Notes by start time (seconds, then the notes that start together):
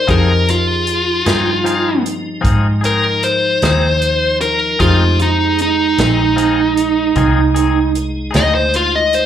0.07 F2 F3 C4 D#4 G4 G#4 A#4 C5, kick, closed hi-hat
0.48 F4, closed hi-hat
0.87 closed hi-hat
1.26 G2 C4 D#4 G#4, snare, closed hi-hat
1.64 F3 C4 D#4 G#4, closed hi-hat
2.06 closed hi-hat
2.41 G#2 F3 C4 D#4 G#4, kick, closed hi-hat
2.81 C4 D#4 G#4, closed hi-hat
2.85 A#4
3.23 C5, closed hi-hat
3.62 D#2 C4 D#4 G#4, snare, closed hi-hat
4.02 closed hi-hat
4.41 A#4, closed hi-hat
4.79 F2 F3 G#3 A3 C4 D#4 F4 G4 G#4 C5, kick, closed hi-hat
5.19 G#3 D#4, closed hi-hat
5.58 D#4, closed hi-hat
5.98 A#1 C4 D#4 G#4, snare, closed hi-hat
6.36 F3 C4 D#4 G#4, closed hi-hat
6.77 closed hi-hat
7.16 C2 F3 C4 D#4 G#4, kick, closed hi-hat
7.55 C4 D#4 G#4, closed hi-hat
7.95 closed hi-hat
8.31 D2 C4 D#4 G#4, closed hi-hat
8.35 D#5, snare
8.55 C5
8.74 F4, closed hi-hat
8.96 D#5
9.13 C5, closed hi-hat